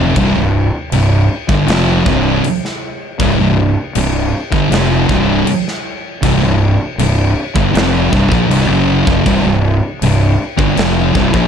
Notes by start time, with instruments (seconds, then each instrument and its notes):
Already playing: fingered electric bass F1, distorted electric guitar F2 C3
0.15 fingered electric bass C1, distorted electric guitar C2 G2, kick, crash
0.35 fingered electric bass C1, distorted electric guitar C2 G2
0.92 fingered electric bass C1, distorted electric guitar C2 G2, crash
1.48 fingered electric bass G1, distorted electric guitar G2 D3, kick
1.67 fingered electric bass F1, distorted electric guitar F2 C3 F3, snare, crash
2.05 fingered electric bass C1, distorted electric guitar C2 G2 C3, kick
2.43 muted fingered electric bass stroke, muted distorted electric guitar stroke, crash
2.65 snare
3.19 fingered electric bass C1, distorted electric guitar C2 G2, kick, crash
3.39 fingered electric bass C1, distorted electric guitar C2 G2
3.95 fingered electric bass C1, distorted electric guitar C2 G2, crash
4.51 fingered electric bass G1, distorted electric guitar G2 D3, kick
4.70 fingered electric bass F1, distorted electric guitar F2 C3 F3, snare, crash
5.09 fingered electric bass C1, distorted electric guitar C2 G2 C3, kick
5.47 muted fingered electric bass stroke, muted distorted electric guitar stroke, crash
5.68 snare
6.23 fingered electric bass C1, distorted electric guitar C2 G2, kick, crash
6.41 fingered electric bass C1, distorted electric guitar C2 G2
6.98 fingered electric bass C1, distorted electric guitar C2 G2, crash
7.55 fingered electric bass G1, distorted electric guitar G2 D3, kick
7.73 fingered electric bass F1, distorted electric guitar F2 C3 F3, crash
7.77 snare
8.12 fingered electric bass C1, distorted electric guitar C2 G2, kick
8.31 fingered electric bass A#1, distorted electric guitar A#2 F3, kick
8.50 fingered electric bass C1, distorted electric guitar C2 G2, crash
8.68 fingered electric bass F#1, distorted electric guitar F#2 C#3 F#3
9.07 fingered electric bass F1, distorted electric guitar F2 C3, kick
9.26 fingered electric bass C1, distorted electric guitar C2 G2, kick, crash
9.44 fingered electric bass C1, distorted electric guitar C2 G2
10.02 fingered electric bass C1, distorted electric guitar C2 G2, crash
10.57 fingered electric bass G1, distorted electric guitar G2 D3, kick
10.76 fingered electric bass F1, distorted electric guitar F2 C3 F3, snare, crash
11.15 fingered electric bass C1, distorted electric guitar C2 G2, kick
11.32 fingered electric bass A#1, distorted electric guitar A#2 F3, kick